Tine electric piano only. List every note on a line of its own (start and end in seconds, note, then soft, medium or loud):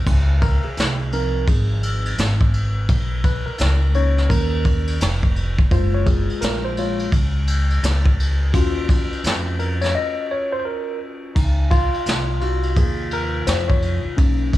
0.42 0.65 A#4 loud
0.64 1.14 G#4 medium
1.13 2.15 F3 medium
1.13 2.14 C4 soft
1.13 2.15 D#4 medium
1.13 1.46 A#4 medium
1.48 2.14 G#4 medium
3.25 3.47 B4 medium
3.46 3.96 A#4 medium
3.94 4.96 A#3 medium
3.94 4.97 C#4 medium
3.94 4.97 D#4 medium
3.94 4.28 C#5 loud
4.29 4.96 A#4 medium
5.71 6.77 G#3 medium
5.71 6.76 A#3 medium
5.71 6.77 F4 medium
5.71 5.94 C5 loud
5.94 6.07 C#5 loud
6.06 6.43 G#4 medium
6.41 6.62 A#4 medium
6.65 6.78 C5 loud
6.78 7.09 G#3 soft
6.78 7.09 A#3 soft
6.78 7.10 F4 medium
6.78 7.11 C#5 medium
8.53 11.32 C#4 medium
8.53 11.32 F4 medium
8.53 11.32 F#4 medium
9.59 9.69 A#4 medium
9.81 9.94 C#5 loud
9.95 10.31 D#5 loud
10.31 10.51 C#5 medium
10.52 10.58 C5 loud
10.60 10.65 C5 medium
10.65 10.98 A#4 medium
11.35 11.72 D#4 medium
11.71 12.39 F4 medium
12.40 14.14 C3 medium
12.40 14.14 D#4 medium
12.40 14.14 F4 medium
12.40 12.78 F#4 medium
12.77 13.14 G#4 medium
13.13 13.46 A#4 loud
13.47 13.70 C5 medium
13.68 14.02 C#5 medium
14.16 14.58 A#3 medium
14.16 14.58 C#4 medium
14.16 14.58 D#4 medium